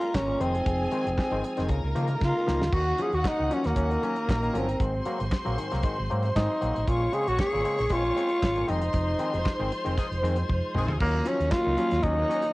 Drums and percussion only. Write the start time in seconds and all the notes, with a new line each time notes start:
0.01 closed hi-hat
0.15 kick, snare, clap
0.41 closed hi-hat
0.55 closed hi-hat
0.66 kick, closed hi-hat
0.91 closed hi-hat
1.07 closed hi-hat
1.18 kick, snare, clap
1.44 closed hi-hat
1.57 snare, closed hi-hat
1.69 kick, closed hi-hat
1.96 closed hi-hat
2.08 closed hi-hat
2.21 kick, snare
2.48 snare
2.62 snare
2.73 kick, crash
2.98 closed hi-hat
3.12 closed hi-hat
3.24 kick, snare, clap
3.51 closed hi-hat
3.64 snare, closed hi-hat
3.76 kick, closed hi-hat
3.91 closed hi-hat
4.03 closed hi-hat
4.16 closed hi-hat
4.29 kick, snare, clap
4.43 closed hi-hat
4.55 closed hi-hat
4.69 closed hi-hat
4.80 kick, closed hi-hat
5.05 closed hi-hat
5.20 closed hi-hat
5.32 kick, snare, clap
5.46 closed hi-hat
5.58 closed hi-hat
5.71 snare, closed hi-hat
5.83 kick, closed hi-hat
6.11 closed hi-hat
6.23 closed hi-hat
6.36 kick, snare, clap
6.62 closed hi-hat
6.76 closed hi-hat
6.88 kick, closed hi-hat
7.13 closed hi-hat
7.28 closed hi-hat
7.39 kick, snare, clap
7.65 closed hi-hat
7.78 snare, closed hi-hat
7.90 kick, closed hi-hat
8.17 closed hi-hat
8.29 closed hi-hat
8.43 kick, snare, clap
8.55 closed hi-hat
8.68 closed hi-hat
8.81 closed hi-hat
8.93 kick, closed hi-hat
9.19 closed hi-hat
9.34 closed hi-hat
9.46 kick, snare, clap
9.72 closed hi-hat
9.86 closed hi-hat
9.98 kick, closed hi-hat
10.12 closed hi-hat
10.25 closed hi-hat
10.36 closed hi-hat
10.49 kick, high tom
10.75 mid tom
10.88 floor tom
11.00 kick, crash
11.26 closed hi-hat
11.40 closed hi-hat
11.52 kick, snare, clap
11.78 closed hi-hat
11.91 snare, closed hi-hat
12.03 kick, closed hi-hat
12.31 closed hi-hat
12.42 closed hi-hat